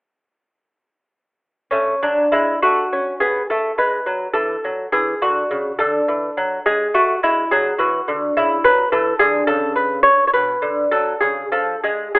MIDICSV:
0, 0, Header, 1, 2, 480
1, 0, Start_track
1, 0, Tempo, 600000
1, 1377, Time_signature, 12, 3, 24, 8
1, 2339, Tempo, 574163
1, 5699, Tempo, 566038
1, 8579, Tempo, 591133
1, 9539, Tempo, 635593
1, 10045, End_track
2, 0, Start_track
2, 0, Title_t, "Lute"
2, 0, Program_c, 0, 24
2, 1367, Note_on_c, 0, 61, 74
2, 1377, Note_on_c, 0, 57, 68
2, 1551, Note_off_c, 0, 57, 0
2, 1604, Note_off_c, 0, 61, 0
2, 1621, Note_on_c, 0, 54, 68
2, 1622, Note_on_c, 0, 62, 80
2, 1796, Note_off_c, 0, 54, 0
2, 1852, Note_off_c, 0, 62, 0
2, 1855, Note_on_c, 0, 64, 81
2, 1864, Note_on_c, 0, 56, 74
2, 2037, Note_off_c, 0, 56, 0
2, 2090, Note_off_c, 0, 64, 0
2, 2099, Note_on_c, 0, 66, 85
2, 2104, Note_on_c, 0, 57, 67
2, 2274, Note_off_c, 0, 57, 0
2, 2341, Note_on_c, 0, 61, 68
2, 2516, Note_off_c, 0, 61, 0
2, 2561, Note_off_c, 0, 66, 0
2, 2572, Note_on_c, 0, 68, 82
2, 2576, Note_on_c, 0, 59, 65
2, 2751, Note_off_c, 0, 59, 0
2, 2807, Note_off_c, 0, 68, 0
2, 2821, Note_on_c, 0, 69, 77
2, 2825, Note_on_c, 0, 57, 64
2, 2995, Note_off_c, 0, 57, 0
2, 3049, Note_off_c, 0, 69, 0
2, 3055, Note_on_c, 0, 56, 56
2, 3058, Note_on_c, 0, 71, 82
2, 3227, Note_off_c, 0, 56, 0
2, 3291, Note_on_c, 0, 54, 72
2, 3464, Note_off_c, 0, 54, 0
2, 3513, Note_off_c, 0, 71, 0
2, 3519, Note_on_c, 0, 69, 73
2, 3523, Note_on_c, 0, 52, 62
2, 3701, Note_off_c, 0, 52, 0
2, 3778, Note_on_c, 0, 54, 66
2, 3951, Note_off_c, 0, 54, 0
2, 3990, Note_off_c, 0, 69, 0
2, 4011, Note_on_c, 0, 68, 86
2, 4012, Note_on_c, 0, 52, 73
2, 4188, Note_off_c, 0, 52, 0
2, 4244, Note_off_c, 0, 68, 0
2, 4256, Note_on_c, 0, 50, 70
2, 4259, Note_on_c, 0, 66, 80
2, 4429, Note_off_c, 0, 50, 0
2, 4498, Note_on_c, 0, 49, 74
2, 4670, Note_off_c, 0, 49, 0
2, 4717, Note_off_c, 0, 66, 0
2, 4732, Note_on_c, 0, 69, 89
2, 4740, Note_on_c, 0, 50, 83
2, 4911, Note_off_c, 0, 50, 0
2, 4980, Note_on_c, 0, 52, 69
2, 5152, Note_off_c, 0, 52, 0
2, 5223, Note_on_c, 0, 54, 80
2, 5395, Note_off_c, 0, 54, 0
2, 5428, Note_off_c, 0, 69, 0
2, 5461, Note_on_c, 0, 56, 78
2, 5462, Note_on_c, 0, 68, 94
2, 5634, Note_off_c, 0, 56, 0
2, 5691, Note_off_c, 0, 68, 0
2, 5699, Note_on_c, 0, 57, 74
2, 5701, Note_on_c, 0, 66, 75
2, 5874, Note_off_c, 0, 57, 0
2, 5931, Note_off_c, 0, 66, 0
2, 5943, Note_on_c, 0, 56, 66
2, 5946, Note_on_c, 0, 64, 84
2, 6117, Note_off_c, 0, 56, 0
2, 6175, Note_off_c, 0, 64, 0
2, 6183, Note_on_c, 0, 68, 105
2, 6188, Note_on_c, 0, 54, 82
2, 6361, Note_off_c, 0, 54, 0
2, 6413, Note_on_c, 0, 66, 72
2, 6416, Note_off_c, 0, 68, 0
2, 6417, Note_on_c, 0, 52, 72
2, 6594, Note_off_c, 0, 52, 0
2, 6663, Note_on_c, 0, 50, 81
2, 6836, Note_off_c, 0, 50, 0
2, 6879, Note_off_c, 0, 66, 0
2, 6908, Note_on_c, 0, 49, 78
2, 6908, Note_on_c, 0, 64, 90
2, 7079, Note_off_c, 0, 49, 0
2, 7134, Note_off_c, 0, 64, 0
2, 7141, Note_on_c, 0, 54, 82
2, 7142, Note_on_c, 0, 71, 109
2, 7313, Note_off_c, 0, 54, 0
2, 7369, Note_off_c, 0, 71, 0
2, 7377, Note_on_c, 0, 52, 93
2, 7377, Note_on_c, 0, 69, 93
2, 7549, Note_off_c, 0, 52, 0
2, 7604, Note_off_c, 0, 69, 0
2, 7608, Note_on_c, 0, 68, 106
2, 7613, Note_on_c, 0, 50, 86
2, 7784, Note_off_c, 0, 50, 0
2, 7839, Note_off_c, 0, 68, 0
2, 7843, Note_on_c, 0, 69, 108
2, 7847, Note_on_c, 0, 49, 85
2, 8076, Note_off_c, 0, 69, 0
2, 8085, Note_on_c, 0, 71, 95
2, 8313, Note_off_c, 0, 71, 0
2, 8316, Note_on_c, 0, 73, 114
2, 8372, Note_off_c, 0, 49, 0
2, 8505, Note_off_c, 0, 73, 0
2, 8524, Note_on_c, 0, 73, 85
2, 8572, Note_off_c, 0, 73, 0
2, 8576, Note_on_c, 0, 71, 103
2, 8577, Note_on_c, 0, 47, 80
2, 8749, Note_off_c, 0, 47, 0
2, 8807, Note_on_c, 0, 50, 80
2, 8981, Note_off_c, 0, 50, 0
2, 9031, Note_off_c, 0, 71, 0
2, 9046, Note_on_c, 0, 69, 101
2, 9049, Note_on_c, 0, 54, 80
2, 9223, Note_off_c, 0, 54, 0
2, 9279, Note_off_c, 0, 69, 0
2, 9283, Note_on_c, 0, 68, 86
2, 9293, Note_on_c, 0, 49, 73
2, 9471, Note_off_c, 0, 49, 0
2, 9525, Note_off_c, 0, 68, 0
2, 9536, Note_on_c, 0, 53, 74
2, 9539, Note_on_c, 0, 69, 86
2, 9708, Note_off_c, 0, 53, 0
2, 9765, Note_off_c, 0, 69, 0
2, 9776, Note_on_c, 0, 68, 84
2, 9781, Note_on_c, 0, 56, 77
2, 9954, Note_off_c, 0, 56, 0
2, 10002, Note_off_c, 0, 68, 0
2, 10011, Note_on_c, 0, 68, 95
2, 10021, Note_on_c, 0, 54, 65
2, 10045, Note_off_c, 0, 54, 0
2, 10045, Note_off_c, 0, 68, 0
2, 10045, End_track
0, 0, End_of_file